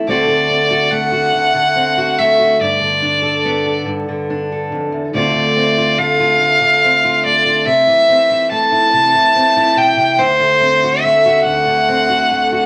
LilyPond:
<<
  \new Staff \with { instrumentName = "Fiddle" } { \time 6/8 \key g \mixolydian \tempo 4. = 47 d''4 fis''4. e''8 | d''4. r4. | d''4 f''4. d''8 | e''4 a''4. g''8 |
c''4 e''8 fis''4. | }
  \new Staff \with { instrumentName = "Steel-string acoustic guitar" } { \time 6/8 \key g \mixolydian << { <d a c' fis'>8 c'16 fis'16 a16 fis'8. c'16 fis'16 a16 fis'16 | r8 d'16 a'16 b16 a'8. d'16 a'8. | <d a c' f'>8 c'16 f'16 a16 f'8. c'16 f'16 a16 f'16 | r8 c'16 e'16 a16 e'8. c'16 e'8. |
r8 c'16 fis'16 a16 fis'8. c'16 fis'16 a16 fis'16 | } \\ { d,16 d4~ d16 d,16 d4~ d16 | g,16 d4~ d16 g,16 d8. f,16 e,16 | d,16 d4~ d16 d,16 d4~ d16 | c16 e4~ e16 c16 e8. b,16 c16 |
d,16 d4~ d16 d,16 d4~ d16 | } >> }
>>